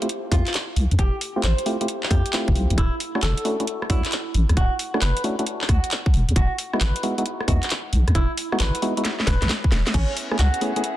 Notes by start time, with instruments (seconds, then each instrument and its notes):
0.02 synth stab A3 C4 E4 F4 G4, closed hi-hat
0.09 closed hi-hat
0.32 wobble bass F2, synth stab A3 C4 E4 F4 G4, nylon-string guitar F4, kick, open hi-hat
0.47 clap, closed hi-hat
0.54 clap, closed hi-hat
0.76 wobble bass C2, open hi-hat
0.91 wobble bass F2, closed hi-hat
0.99 wobble bass F1, nylon-string guitar G4, kick, closed hi-hat
1.21 open hi-hat
1.36 synth stab A3 C4 E4 F4 G4
1.44 wobble bass A1, nylon-string guitar C5, clap, closed hi-hat
1.58 closed hi-hat
1.66 synth stab A3 C4 E4 F4 G4, open hi-hat
1.81 synth stab A3 C4 E4 F4 G4, closed hi-hat
1.88 closed hi-hat
2.03 clap
2.11 wobble bass F2, synth stab A3 C4 E4 F4 G4, nylon-string guitar G4, kick, open hi-hat
2.26 closed hi-hat
2.33 synth stab A3 C4 E4 F4 G4, clap, closed hi-hat
2.48 wobble bass F1, kick
2.55 wobble bass C2, open hi-hat
2.70 wobble bass C2, closed hi-hat
2.78 wobble bass D1, nylon-string guitar E4, kick, closed hi-hat
3.00 open hi-hat
3.15 synth stab A3 C#4 D4 E4 F#4, cross-stick
3.23 wobble bass F#1, nylon-string guitar A4, clap, closed hi-hat
3.38 closed hi-hat
3.45 synth stab A3 C#4 D4 E4 F#4, open hi-hat
3.60 synth stab A3 C#4 D4 E4 F#4, closed hi-hat
3.67 closed hi-hat
3.82 cross-stick
3.90 wobble bass D2, synth stab A3 C#4 D4 E4 F#4, nylon-string guitar E4, kick, open hi-hat
4.05 clap, closed hi-hat
4.12 clap, closed hi-hat
4.34 wobble bass A1, open hi-hat
4.49 wobble bass D2, cross-stick, closed hi-hat
4.57 wobble bass D1, nylon-string guitar F#4, kick, closed hi-hat
4.79 open hi-hat
4.94 synth stab A3 C#4 D4 E4 F#4, cross-stick
5.02 wobble bass F#1, nylon-string guitar B4, clap, closed hi-hat
5.17 closed hi-hat
5.24 synth stab A3 C#4 D4 E4 F#4, open hi-hat
5.39 synth stab A3 C#4 D4 E4 F#4, closed hi-hat
5.47 closed hi-hat
5.61 clap
5.69 wobble bass D2, nylon-string guitar F#4, kick, cross-stick, open hi-hat
5.84 closed hi-hat
5.91 clap, closed hi-hat
6.06 kick
6.14 wobble bass E1, open hi-hat
6.29 wobble bass E2, closed hi-hat
6.36 wobble bass E1, nylon-string guitar F#4, kick, closed hi-hat
6.58 open hi-hat
6.73 synth stab G#3 B3 D#4 E4 F#4, cross-stick
6.81 wobble bass G#1, nylon-string guitar B4, clap, closed hi-hat
6.96 closed hi-hat
7.03 synth stab G#3 B3 D#4 E4 F#4, open hi-hat
7.18 synth stab G#3 B3 D#4 E4 F#4, closed hi-hat
7.26 closed hi-hat
7.41 cross-stick
7.48 wobble bass E2, synth stab G#3 B3 D#4 E4 F#4, nylon-string guitar F#4, kick, open hi-hat
7.63 clap, closed hi-hat
7.70 clap, closed hi-hat
7.93 wobble bass B1, open hi-hat
8.08 wobble bass E2, cross-stick, closed hi-hat
8.15 wobble bass E1, nylon-string guitar E4, kick, closed hi-hat
8.38 open hi-hat
8.52 synth stab G#3 B3 D#4 E4 F#4, cross-stick
8.60 wobble bass G#1, nylon-string guitar B4, clap, closed hi-hat
8.75 closed hi-hat
8.82 synth stab G#3 B3 D#4 E4 F#4, open hi-hat
8.97 synth stab G#3 B3 D#4 E4 F#4, closed hi-hat
9.05 snare, closed hi-hat
9.20 snare
9.27 wobble bass E1, nylon-string guitar B4, kick, snare, open hi-hat
9.42 wobble bass B1, snare, closed hi-hat
9.49 snare, clap, closed hi-hat
9.64 kick
9.72 wobble bass E1, snare, open hi-hat
9.87 snare, closed hi-hat
9.94 wobble bass A1, violin section B3 C#4 E4 G#4, nylon-string guitar C#4, kick, closed hi-hat, crash
10.17 open hi-hat
10.31 synth stab A3 B3 C#4 E4 G#4, cross-stick
10.39 wobble bass C#2, nylon-string guitar F#4, clap, closed hi-hat
10.54 closed hi-hat
10.61 synth stab A3 B3 C#4 E4 G#4, open hi-hat
10.76 synth stab A3 B3 C#4 E4 G#4, closed hi-hat
10.84 closed hi-hat